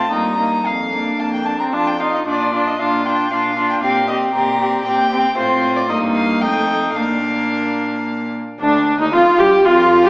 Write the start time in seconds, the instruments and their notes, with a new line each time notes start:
Already playing: viola C4, violin F4 A5
0.11 cello G2, viola A#3, violin D#4 A#5
0.38 viola A#3, violin D#4
0.65 cello F2, violin F5
0.92 viola A#3, violin D4
1.19 cello F2, viola A#3, violin A5
1.34 violin G5
1.46 violin D4 A5
1.60 viola C4, violin A#5
1.72 cello F2, viola D4, violin F4 A5
1.88 violin G5
2.00 viola D#4, violin F4 F5
2.15 violin D#5
2.26 cello A#2, viola D4, violin F4 D5
2.53 viola D4, violin F4
2.67 violin D#5
2.79 cello A#2, viola D4, violin F4 F5
3.06 viola D4, violin F4 G5
3.31 cello A#2, viola D4, violin F4 F5
3.57 viola D4, violin F4
3.70 violin G5
3.82 cello A#2, viola C4, violin G4 F5
4.08 viola C4, violin G4 D#5
4.34 cello A#2, viola C4, violin G4 A#5
4.60 viola C4, violin G4
4.86 cello A#2, viola C4, violin G4 G5
5.11 viola C4, violin G4
5.37 cello A2, viola C4, violin F4 C5
5.77 violin D5
5.89 cello G2, viola A#3, violin D#4 D#5
6.15 violin F5
6.42 cello F2, viola A3, violin D#4 G5
6.95 cello A#2, viola A#3, violin D4 F5
8.60 cello D2, violin D4, viola D4
8.99 cello D#2, violin D#4, viola D#4
9.12 cello F2, violin F4, viola F4
9.38 cello G2, violin G4, viola G4
9.64 cello F2, violin F4, viola F4
10.04 cello G2, violin G4, viola G4